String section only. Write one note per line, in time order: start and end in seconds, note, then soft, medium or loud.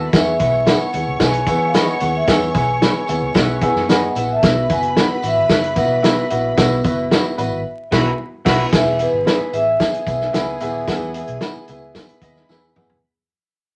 0.07 0.13 B4 medium
0.07 0.13 B5 medium
0.13 4.06 C#5 loud
0.13 4.06 C#6 loud
4.16 4.23 E4 medium
4.16 4.22 E5 medium
4.22 4.29 F#4 medium
4.22 4.29 F#5 medium
4.29 4.36 G#4 medium
4.29 4.36 G#5 medium
4.35 4.42 A4 medium
4.35 4.42 A5 loud
4.43 7.61 B4 loud
4.43 7.61 B5 loud
7.92 8.10 B4 medium
7.92 8.10 B5 loud
8.45 8.64 B4 loud
8.45 8.64 B5 loud
8.72 11.91 G#4 medium
8.72 11.91 G#5 loud
11.94 13.01 B4 medium
11.94 13.01 B5 loud